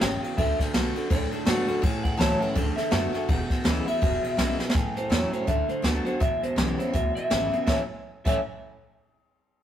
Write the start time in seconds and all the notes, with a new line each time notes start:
0.00 G#1 E2 C#3 G5, snare, ride
0.21 E2 B2, muted upright bass stroke, ride
0.37 D2 D3 A3 E5, kick, ride
0.59 D3 A3 D5, muted upright bass stroke, kick, snare, ride
0.74 B1 D3 A3 B3 D4 F#4, snare, ride
0.95 D3 A3 D4 F#4, ride
1.10 D2 A2 D3 A3 D5, kick, ride
1.31 D3 A3, ride
1.45 A2 D3 A3 B3 D4 F#4, snare, ride
1.67 D3 A3 D4 F#4, muted upright bass stroke, ride
1.82 A1 A2 E3, kick, ride
2.04 E2 A2 E3 F#5, kick, ride
2.17 C#2 A2 E3 F#3 A3 C#4 E4 A5, snare, ride
2.40 A2 E3 C#4 E4 F#5, ride
2.55 D2 D3 A3, kick, ride
2.76 D3 A3 E5, snare, ride
2.91 F#2 D3 A3 B3 D4 F#4, snare, ride
3.13 D3 A3 D4 F#4, snare, ride
3.28 E1 E2 B2 F#5, kick, ride
3.50 E2 B2, kick, snare, ride
3.64 D2 E2 C#3 E3 G#3 B3 E4, snare, ride
3.86 E2 B2 B3 E4 E5, ride
4.01 E1 E2 B2, kick, ride
4.23 E2 B2, muted upright bass stroke, ride
4.37 B1 E2 C#3 E3 G#3 B3 E4, snare, ride
4.59 E2 B2 B3 E4, muted upright bass stroke, snare
4.70 A2, snare
4.74 A2 E3, kick, closed hi-hat
4.95 C#2 A2 E3 C5, closed hi-hat
5.10 E2 A2 E3 F#3 A3 C#4 E4 A4, snare, closed hi-hat
5.31 A2 F#3 C#4 E4 C5, closed hi-hat
5.47 D2 D3 A3 E5, kick, closed hi-hat
5.68 D3 A3 C5, muted upright bass stroke, closed hi-hat
5.82 D2 D3 A3 B3 D4 F#4 A4, snare, closed hi-hat
6.05 D3 B3 D4 F#4 C5, muted upright bass stroke, closed hi-hat
6.20 E1 E2 B2 E5, kick, closed hi-hat
6.41 G#1 E2 B2 C5, closed hi-hat
6.56 B1 E2 C#3 E3 G#3 B3 E4 G4, snare, closed hi-hat
6.78 E2 C#3 B3 E4 C5, closed hi-hat
6.93 D2 E2 B2 E5, kick, closed hi-hat
7.15 E2 B2 E5, closed hi-hat
7.30 G#1 E2 C#3 E3 G#3 B3 E4, snare, closed hi-hat
7.51 E2 C#3 B3 E4, muted upright bass stroke, closed hi-hat
7.66 A2 E3 A3 C#4 E4 E5, kick, snare
8.25 A2 E3 A3 C#4 E4 E5, kick, crash